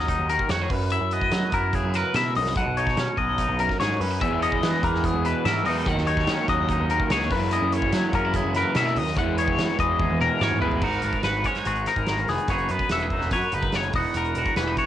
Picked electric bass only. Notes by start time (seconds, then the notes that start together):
Already playing: D#2
0.19 D#2
0.50 F2
0.70 F#2
1.01 F#2
1.32 F#3
1.53 F#2
1.83 F#2
2.15 B2
2.36 C2
2.56 B1
2.67 B1
2.97 B2
3.18 B1
3.49 B1
3.80 G#2
4.00 F#2
4.21 E2
4.32 E2
4.63 E3
4.83 E2
5.14 E2
5.45 G#2
5.66 E2
5.86 D#2
5.97 D#2
6.27 D#3
6.48 D#2
6.79 D#2
7.10 C#2
7.30 F#2
7.62 F#2
7.92 F#3
8.13 F#2
8.44 F#2
8.75 B2
8.96 D#2
9.17 E2
9.27 E2
9.59 E3
9.79 E2
10.10 E2
10.41 G#2
10.61 A1
10.82 G#1
11.03 G#1
11.24 G#1
11.66 G#1
11.96 G#1
12.28 F1
12.48 F#1
12.70 F#2
12.91 E1
13.31 F#2
13.52 F#1
13.73 F#1
13.93 E1
14.14 E1
14.35 E1
14.57 E1